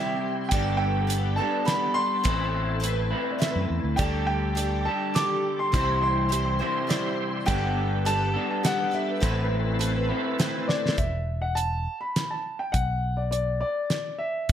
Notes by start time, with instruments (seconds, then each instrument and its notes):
Already playing: clean electric guitar C3 G3 C4 E4 G4, twelve-string acoustic guitar G3 C4 E4 G4, tonewheel organ E4 G4 C5, grand piano E5
0.49 fingered electric bass G1, twelve-string acoustic guitar G3 B3 D4, tonewheel organ G4 A4 B4, grand piano G5, kick, closed hi-hat
0.53 twelve-string acoustic guitar A4
0.77 grand piano G5
1.07 twelve-string acoustic guitar G3 B3 D4 A4, closed hi-hat
1.36 twelve-string acoustic guitar B3 A4, grand piano A5
1.41 clean electric guitar G3, twelve-string acoustic guitar D4
1.65 twelve-string acoustic guitar G3 B3 D4 A4, grand piano B5, snare, closed hi-hat
1.94 grand piano C6
2.24 fingered electric bass A1, twelve-string acoustic guitar A2 A3 C4 E4, tonewheel organ C4 A4, clean electric guitar B4, kick, closed hi-hat
2.80 twelve-string acoustic guitar A3 C4 E4 B4, closed hi-hat
3.10 clean electric guitar A2 A3 C4 E4 B4
3.31 grand piano D5
3.38 twelve-string acoustic guitar A3 C4 E4 B4, grand piano E5, snare, closed hi-hat
3.56 fingered electric bass F#2
3.70 fingered electric bass E2
3.84 fingered electric bass D2
3.96 fingered electric bass D2, twelve-string acoustic guitar D3 G3 G4 A4, tonewheel organ D4 G4 A4, upright piano G4 A4 D5, grand piano G5, kick, closed hi-hat
4.27 grand piano G5
4.55 twelve-string acoustic guitar D3 G3 G4 A4, upright piano G4 A4 D5, closed hi-hat
4.85 clean electric guitar G3 G4 A4, grand piano A5
4.89 clean electric guitar D3
5.14 twelve-string acoustic guitar D3 G3 G4 A4, upright piano G4 A4 D5, grand piano D6, snare, closed hi-hat
5.59 grand piano C6
5.72 fingered electric bass C2, twelve-string acoustic guitar C3 E3 G3 C4 E4 C5, upright piano E4 G4 C5, tonewheel organ E4 G4 C5, kick, closed hi-hat
6.02 grand piano C6
6.29 twelve-string acoustic guitar G3 C4 E4 C5, upright piano E4 G4 C5, closed hi-hat
6.59 twelve-string acoustic guitar G3 C4 E4 C5
6.63 clean electric guitar C3 E3
6.87 twelve-string acoustic guitar G3 C4 E4 C5, upright piano E4 G4 D5, snare, closed hi-hat
7.46 fingered electric bass G1, twelve-string acoustic guitar G3 B3 D4 A4, upright piano G4 A4 B4, tonewheel organ G4 A4 B4, grand piano G5, kick, closed hi-hat
8.05 twelve-string acoustic guitar G3 B3 D4 A4, upright piano G4 A4 B4, grand piano A5, closed hi-hat
8.34 clean electric guitar G3 B3 D4 A4
8.51 grand piano A5
8.63 twelve-string acoustic guitar G3 B3 D4 A4, upright piano G4 A4 D5, grand piano F#5, snare, closed hi-hat
8.91 twelve-string acoustic guitar B3 D4 A4, grand piano E5
9.20 fingered electric bass A1, twelve-string acoustic guitar A2 A3 C4 E4 B4, upright piano C4 A4 B4, tonewheel organ C4 A4 B4, kick, closed hi-hat
9.79 twelve-string acoustic guitar A3 C4 E4 B4, upright piano C4 A4 B4, closed hi-hat
10.09 clean electric guitar A2 A3 C4 E4 B4
10.39 twelve-string acoustic guitar A3 C4 E4 B4, upright piano C4 A4 B4, snare, closed hi-hat
10.68 grand piano D5, snare
10.89 snare
10.97 fingered electric bass E1, grand piano E5, kick, closed hi-hat
11.42 grand piano F#5
11.55 grand piano A5, closed hi-hat
12.01 grand piano B5
12.16 snare, closed hi-hat
12.30 grand piano A5
12.59 grand piano G5
12.72 fingered electric bass B1, grand piano F#5, kick, closed hi-hat
13.17 grand piano D5
13.31 grand piano D5, closed hi-hat
13.61 grand piano D5
13.90 snare, closed hi-hat
14.18 grand piano E5